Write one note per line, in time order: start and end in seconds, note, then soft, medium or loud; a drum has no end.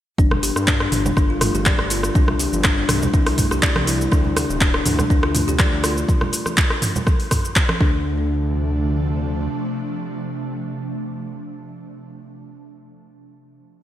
0.18 0.51 G1 medium
0.18 2.13 D3 medium
0.18 4.08 G3 medium
0.18 0.31 D4 loud
0.18 2.13 F4 medium
0.18 kick loud
0.18 high conga medium
0.18 shaker soft
0.31 cross-stick medium
0.31 low conga medium
0.43 0.50 G4 medium
0.43 open hi-hat medium
0.43 shaker medium
0.56 0.88 G2 medium
0.56 cross-stick medium
0.56 shaker medium
0.68 0.75 D4 loud
0.68 kick loud
0.68 clap loud
0.68 shaker soft
0.80 0.91 D4 medium
0.80 cross-stick medium
0.92 1.11 G1 loud
0.92 mid tom medium
0.92 open hi-hat medium
0.92 high conga medium
0.92 shaker medium
1.06 low conga loud
1.06 shaker medium
1.17 1.50 G1 loud
1.17 1.29 D4 loud
1.17 kick loud
1.17 cross-stick medium
1.17 shaker soft
1.30 1.40 F4 medium
1.41 1.49 A3 medium
1.41 cross-stick loud
1.41 mid tom medium
1.41 open hi-hat medium
1.41 high conga medium
1.41 shaker medium
1.54 1.73 G1 loud
1.54 1.65 G4 loud
1.54 shaker medium
1.66 1.78 D5 medium
1.66 kick loud
1.66 clap loud
1.66 high conga medium
1.66 shaker soft
1.79 2.11 G1 medium
1.79 cross-stick medium
1.90 2.02 F4 medium
1.90 open hi-hat loud
1.90 shaker medium
2.03 cross-stick medium
2.03 shaker medium
2.15 2.48 C2 loud
2.15 4.10 C3 medium
2.15 2.28 D4 loud
2.15 4.10 E4 medium
2.15 kick loud
2.15 high conga medium
2.15 shaker soft
2.28 cross-stick medium
2.28 low conga medium
2.39 2.47 G4 medium
2.39 open hi-hat medium
2.39 shaker loud
2.53 2.84 G1 loud
2.53 high conga medium
2.53 shaker medium
2.64 kick loud
2.64 cross-stick medium
2.64 clap loud
2.64 shaker soft
2.78 2.88 D4 medium
2.89 3.08 C2 loud
2.89 cross-stick loud
2.89 mid tom medium
2.89 open hi-hat medium
2.89 high conga medium
2.89 shaker medium
3.02 low conga loud
3.02 shaker medium
3.13 3.46 C2 loud
3.13 3.25 D4 loud
3.13 kick loud
3.13 high conga medium
3.13 shaker soft
3.26 3.37 E4 medium
3.26 cross-stick loud
3.26 open hi-hat medium
3.38 3.45 A3 medium
3.38 kick medium
3.38 mid tom medium
3.38 open hi-hat medium
3.38 shaker medium
3.51 3.70 C2 loud
3.51 3.62 G4 loud
3.51 cross-stick medium
3.51 shaker medium
3.63 3.74 D5 medium
3.63 kick loud
3.63 clap loud
3.63 shaker soft
3.76 4.08 C2 medium
3.76 cross-stick loud
3.76 high conga loud
3.87 3.99 E4 medium
3.87 open hi-hat loud
3.87 shaker loud
4.01 shaker medium
4.11 4.45 D2 loud
4.11 6.06 C3 medium
4.11 6.06 F3 medium
4.11 6.06 A3 medium
4.11 6.06 D4 medium
4.11 4.24 D4 loud
4.11 kick loud
4.11 cross-stick medium
4.11 high conga medium
4.11 shaker soft
4.25 low conga medium
4.36 4.43 G4 medium
4.36 cross-stick loud
4.36 open hi-hat medium
4.36 shaker loud
4.50 4.81 D1 loud
4.50 shaker medium
4.61 4.68 D4 loud
4.61 kick loud
4.61 clap loud
4.61 shaker soft
4.74 4.84 D4 medium
4.74 cross-stick loud
4.85 5.05 D2 loud
4.85 mid tom medium
4.85 open hi-hat medium
4.85 high conga medium
4.85 shaker loud
4.99 cross-stick medium
4.99 low conga loud
4.99 shaker medium
5.10 5.43 D2 loud
5.10 5.22 D4 loud
5.10 kick loud
5.10 shaker soft
5.23 5.34 F4 medium
5.23 cross-stick loud
5.35 5.42 A3 medium
5.35 mid tom medium
5.35 open hi-hat medium
5.35 high conga medium
5.35 shaker loud
5.48 5.66 D2 loud
5.48 5.59 G4 loud
5.48 shaker medium
5.59 5.71 D5 medium
5.59 kick loud
5.59 cross-stick medium
5.59 clap loud
5.59 high conga medium
5.59 shaker soft
5.73 6.04 D2 medium
5.84 5.96 F4 medium
5.84 cross-stick loud
5.84 open hi-hat medium
5.84 shaker loud
5.97 shaker medium
6.08 kick loud
6.08 high conga medium
6.08 shaker soft
6.21 cross-stick medium
6.21 low conga medium
6.33 open hi-hat medium
6.33 shaker loud
6.46 cross-stick medium
6.46 high conga medium
6.46 shaker medium
6.57 kick loud
6.57 clap loud
6.57 shaker soft
6.70 cross-stick medium
6.82 mid tom medium
6.82 open hi-hat medium
6.82 high conga medium
6.82 shaker loud
6.96 low conga loud
6.96 shaker medium
7.07 kick loud
7.07 cross-stick medium
7.07 high conga medium
7.07 shaker soft
7.20 open hi-hat soft
7.31 kick medium
7.31 cross-stick medium
7.31 mid tom medium
7.31 open hi-hat medium
7.31 shaker loud
7.45 shaker medium
7.56 kick loud
7.56 clap loud
7.56 shaker soft
7.69 cross-stick loud
7.69 high conga loud
7.80 9.49 D2 loud
7.80 11.69 C3 medium
7.80 11.69 F3 medium
7.80 11.69 A3 medium
7.80 11.69 D4 loud
7.80 8.26 D4 loud
7.80 kick loud